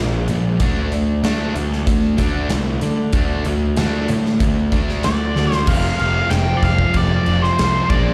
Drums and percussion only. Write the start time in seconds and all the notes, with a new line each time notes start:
0.28 closed hi-hat
0.60 kick, closed hi-hat
0.92 closed hi-hat
1.24 snare, closed hi-hat
1.56 closed hi-hat
1.72 snare
1.87 kick, closed hi-hat
2.18 kick, closed hi-hat
2.50 snare, closed hi-hat
2.81 closed hi-hat
3.13 kick, closed hi-hat
3.45 closed hi-hat
3.77 snare, closed hi-hat
4.08 closed hi-hat
4.26 snare
4.40 kick, closed hi-hat
4.72 kick, closed hi-hat
4.89 snare
5.03 snare, closed hi-hat
5.36 snare
5.52 snare
5.67 kick, crash
5.99 crash
6.30 snare, crash
6.62 kick, snare, crash
6.79 kick
6.94 kick, crash
7.26 crash
7.44 snare
7.58 snare, crash
7.90 kick, crash